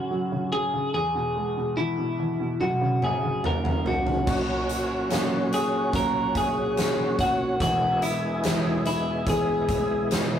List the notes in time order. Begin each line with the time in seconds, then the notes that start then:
Already playing: F#2 C#3 F#3 C#4 F#4
0.11 F#3
0.32 C#3
0.52 F#3 G#4
0.74 C#3
0.94 E2 G#4
1.15 B2
1.36 G#3
1.57 B2
1.77 E3 E4
1.99 B2
2.20 E3
2.40 B2
2.61 F#2 F#4, high tom
2.81 C#3
3.02 C#4 G#4, mid tom
3.23 C#3
3.43 A#3 A#4, mid tom
3.64 C#3, mid tom
3.85 A#3 F#4, floor tom
4.06 C#3, floor tom
4.26 F#1 F#2 A#2 F#3 C#4 F#4, kick, crash
4.69 closed hi-hat
5.10 F#3 A#3 C#4, snare, closed hi-hat
5.53 G#4, closed hi-hat
5.93 F#3 A#3 C#4 A#4, kick, closed hi-hat
6.35 G#4, kick, closed hi-hat
6.77 snare, closed hi-hat
7.19 F#4, kick, closed hi-hat
7.60 E1 E2 B2 G#3 E4 F#4 G#4, kick, closed hi-hat
8.02 E4, closed hi-hat
8.43 E3 G#3 B3, snare, closed hi-hat
8.85 E4, closed hi-hat
9.27 E3 G#3 B3 G#4, kick, closed hi-hat
9.68 kick, closed hi-hat
10.11 snare, closed hi-hat